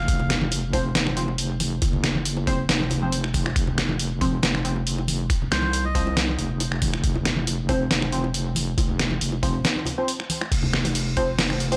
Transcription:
Already playing: F5
0.08 F1, kick, closed hi-hat
0.19 high bongo, low conga
0.30 finger snap, snare, closed hi-hat
0.41 high conga
0.51 closed hi-hat, high bongo
0.73 F3 C4 C5, kick, open hi-hat, high bongo
0.95 F1, snare, closed hi-hat
1.06 finger snap, high bongo, high conga
1.17 F3 C4 C5, closed hi-hat
1.28 high bongo
1.38 closed hi-hat
1.60 open hi-hat, high bongo, high conga
1.82 F#1, kick, closed hi-hat, high bongo
1.93 low conga
2.04 finger snap, snare, closed hi-hat
2.15 high bongo, high conga
2.25 closed hi-hat
2.37 high bongo
2.47 F3 C4 C5, kick, open hi-hat
2.69 F1, snare, closed hi-hat, high bongo
2.81 high conga
2.90 closed hi-hat, high bongo, low conga
3.02 F3 C4 C5
3.12 closed hi-hat
3.24 finger snap, high bongo
3.34 kick, open hi-hat, high conga
3.46 finger snap, high bongo
3.56 F1, kick, closed hi-hat
3.67 high bongo, low conga
3.78 finger snap, snare, closed hi-hat
3.89 high bongo, high conga
3.99 closed hi-hat
4.21 F3 C4 C5, kick, open hi-hat, high bongo
4.43 F1, snare, closed hi-hat, high bongo
4.54 finger snap, high conga
4.65 F3 C4 C5, closed hi-hat
4.76 high bongo
4.87 closed hi-hat
4.98 high bongo
5.08 open hi-hat, high conga
5.30 kick, closed hi-hat, high bongo
5.42 low conga
5.52 C2 C5, finger snap, snare, closed hi-hat, high bongo
5.62 high conga
5.73 closed hi-hat
5.85 D#5, high bongo
5.95 F3 C4 C5, kick, open hi-hat
6.07 high bongo
6.17 snare, closed hi-hat
6.29 high conga
6.38 F1, closed hi-hat, high bongo, low conga
6.60 closed hi-hat, high bongo
6.72 finger snap
6.82 kick, open hi-hat, high conga
6.94 finger snap, high bongo
7.04 F1, kick, closed hi-hat
7.14 high bongo, low conga
7.25 finger snap, snare, closed hi-hat
7.36 high conga
7.47 closed hi-hat, high bongo
7.69 F3 C4 C5, kick, open hi-hat, high bongo
7.91 F1, snare, closed hi-hat
8.02 finger snap, high bongo, high conga
8.12 F3 C4 C5, closed hi-hat
8.24 high bongo
8.34 closed hi-hat
8.55 open hi-hat, high bongo, high conga
8.78 F1, kick, closed hi-hat, high bongo
8.89 low conga
8.99 finger snap, snare, closed hi-hat
9.10 high bongo, high conga
9.21 F1, closed hi-hat
9.32 high bongo
9.43 F3 C4 C5, kick, open hi-hat
9.64 snare, closed hi-hat, high bongo
9.76 high conga
9.85 closed hi-hat, high bongo, low conga
9.98 F3 C4 C5
10.08 closed hi-hat
10.20 finger snap, high bongo
10.30 open hi-hat, high conga
10.41 finger snap, high bongo
10.52 F1, kick, closed hi-hat, crash
10.63 high bongo, low conga
10.73 finger snap, snare
10.85 closed hi-hat, high bongo, high conga
10.95 closed hi-hat, crash
11.17 F3 C4 C5, kick, open hi-hat, high bongo
11.39 snare, closed hi-hat, crash, high bongo
11.50 finger snap, high conga
11.60 closed hi-hat
11.71 F3 C4 C5, closed hi-hat, high bongo

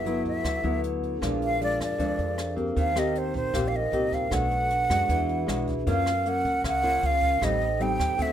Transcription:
Already playing: G1 G2 E4 A4 B4 E5 F#5
0.05 F#3 B3 E4, closed hi-hat
0.25 D2 E5, kick, closed hi-hat
0.44 D2 D3, kick, cross-stick, closed hi-hat
0.64 D2 F#3 B3 E4, closed hi-hat
0.84 closed hi-hat
1.03 kick, closed hi-hat
1.17 D4 G#4 A#4
1.22 A#1 A#2 F3 G#3 D4 F5, kick, cross-stick, closed hi-hat
1.42 F5, closed hi-hat
1.61 F3 G#3 D4 D5, closed hi-hat
1.80 F2 D5, kick, cross-stick, closed hi-hat
1.98 F2 F3 G#3 D4, kick, closed hi-hat
2.19 F2, closed hi-hat
2.38 cross-stick, closed hi-hat
2.56 A#3 C4 G4, kick, closed hi-hat
2.72 D#4 A#4 C5
2.76 D#2 D#3 F5 G5, kick, closed hi-hat
2.95 A#3 C4 G4 D#5, cross-stick, closed hi-hat
3.15 C5, closed hi-hat
3.34 A#1 C5, kick, closed hi-hat
3.53 A#1 A#2 A#3 C4 G4, kick, cross-stick, closed hi-hat
3.68 F5
3.73 D#5, closed hi-hat
3.92 C2 A#3 C4 G4, closed hi-hat
4.10 D#4 A#4 C5 G5, kick, closed hi-hat
4.14 F5
4.27 B2 D4 A4 B4
4.31 B1 A3 D4 F#4 F#5, kick, cross-stick, closed hi-hat
4.51 closed hi-hat
4.70 closed hi-hat
4.90 F#2 G#3 D4 F#4, kick, cross-stick, closed hi-hat
5.05 D4 F#4
5.09 E2 E3 G#4 E5, kick, closed hi-hat
5.29 closed hi-hat
5.46 B1 G#3 D4 F#4, cross-stick, closed hi-hat
5.67 kick, closed hi-hat
5.84 F#2 F#3 A#3 C#4 F4, kick, closed hi-hat
5.88 A#4 F5 F6
6.06 cross-stick, closed hi-hat
6.26 A#3 C#4 F#5, closed hi-hat
6.45 C#2, kick, closed hi-hat
6.64 C#2 C#3 F#5, kick, cross-stick, closed hi-hat
6.83 A#3 C#4 F4, closed hi-hat
7.03 C#2 F5, closed hi-hat
7.22 kick, closed hi-hat
7.39 A1 A2 G3 C4 D#4 A4, kick, cross-stick, closed hi-hat
7.43 C5 D#5 G5
7.61 closed hi-hat
7.80 G3 C4 D#4 G5, closed hi-hat
8.00 D#2, kick, cross-stick, closed hi-hat
8.16 D2 D3 A3 C4 D4 F#4 A4 C5, kick, closed hi-hat
8.21 E5 F#5

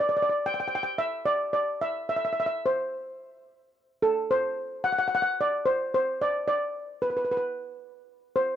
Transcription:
0.00 D5
0.09 D5
0.17 D5
0.22 D5
0.29 D5
0.46 G5
0.54 G5
0.60 G5
0.68 G5
0.75 G5
0.83 G5
0.98 E5
1.25 D5
1.53 D5
1.81 E5
2.09 E5
2.16 E5
2.25 E5
2.33 E5
2.40 E5
2.46 E5
2.66 C5
4.02 A4
4.31 C5
4.84 F#5
4.92 F#5
4.99 F#5
5.08 F#5
5.15 F#5
5.22 F#5
5.41 D5
5.66 C5
5.94 C5
6.22 D5
6.48 D5
7.02 B4
7.10 B4
7.17 B4
7.25 B4
7.31 B4
7.37 B4
8.36 C5

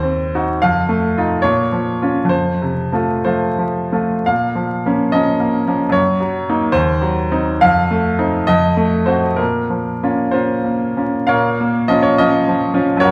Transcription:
Already playing: D#2 C5
0.03 C4
0.35 D#4 F#4
0.62 F2 F5
0.89 A3
1.18 D#4 F4
1.42 A#2 C#5
1.72 F3
2.02 C#4 F4
2.25 F2
2.29 C5
2.62 C3
2.92 F3 A3 F4
3.25 F3 A3 F4 C5
3.59 F3
3.92 F3 A3 F4
4.26 A#2 F5
4.55 F3
4.86 F3 A#3 C#4
5.12 F3 A#3 C#4 D#5
5.40 A#3
5.67 F3 A#3 C#4
5.89 F#2 C#5
6.20 F#3
6.49 A#3 D#4
6.72 D#2 C5
7.02 F#3
7.31 C4 D#4
7.61 F2 F5
7.91 A3
8.19 C4 D#4
8.47 F2 D#5
8.77 A3
9.06 C4 F#4 C5
9.36 A#2 A#4
9.70 F3
10.03 A#3 C#4 F4
10.31 A#3 C#4 F4 C5
10.64 A#3
10.97 A#3 C#4 F4
11.27 A#2 A#4 C#5 F5
11.60 A#3
11.88 F3 C#4 F4 D#5
12.03 C#5
12.18 F3 C#4 F4 D#5
12.48 F3
12.74 F3 C#4 F4
12.97 F#2 C#5
13.01 F#4 A#4

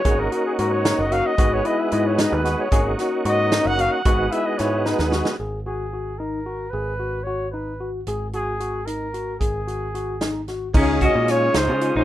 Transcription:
Already playing: C#5
0.04 G#1 A#3 C#4 D#4 F#4 G#4, kick, closed hi-hat
0.20 A#4
0.32 F#4 A#4, closed hi-hat
0.46 G#4
0.59 G#2 F#4 A#4, closed hi-hat
0.72 C#5
0.85 D#4, snare, closed hi-hat
0.99 F#1 D#5
1.12 F#4 F5, closed hi-hat
1.26 D#5
1.37 G#1 G#3 B3 D#4 F#4, kick, closed hi-hat
1.53 C#5
1.65 E4 D#5, closed hi-hat
1.79 E5
1.92 G#2 E4 D#5, closed hi-hat
2.07 C#5
2.18 D#4 D#5, snare, closed hi-hat
2.32 D#2 B4
2.45 F#4, snare, closed hi-hat
2.61 C#5
2.71 G#1 A#3 C#4 D#4 F#4 G#4, kick, closed hi-hat
2.99 F#4, snare, closed hi-hat
3.25 G#2 F#4 D#5, closed hi-hat
3.52 D#4, snare, closed hi-hat
3.65 F#1 F#5
3.79 F#4 F5, closed hi-hat
3.92 F#5
4.05 G#1 G#3 B3 D#4 F#4, kick, closed hi-hat
4.32 E4 E5, closed hi-hat
4.46 D#5
4.58 G#2 E4 C#5, snare, closed hi-hat
4.86 D#4 B4, snare
4.99 D#2, snare
5.12 F#4, snare
5.25 snare
5.40 G#1 G#4
5.66 F#4 G#4
5.93 F#4
6.19 D#4 A#4
6.46 F#4
6.70 G#1 G#4 B4
7.00 F#4
7.23 F#4 C#5
7.51 D#4 B4
7.80 F#4
8.07 G#1 G#4, closed hi-hat
8.33 F#4 G#4, closed hi-hat
8.60 F#4, closed hi-hat
8.86 D#4 A#4, closed hi-hat
9.14 F#4, closed hi-hat
9.40 G#1 G#4, kick, closed hi-hat
9.67 F#4, closed hi-hat
9.95 F#4, closed hi-hat
10.21 D#4, snare, closed hi-hat
10.48 F#4, snare, closed hi-hat
10.73 C#2 G#3 C#4 D#4 F4 G#4, kick, crash
11.01 C#4 F#4 D#5, kick, closed hi-hat
11.15 A#2
11.28 C#4 F4 C#5, snare, closed hi-hat
11.54 C#2 D#4 C5, snare, closed hi-hat
11.68 C#3
11.81 F4, closed hi-hat
11.96 A#1 D#4 C5

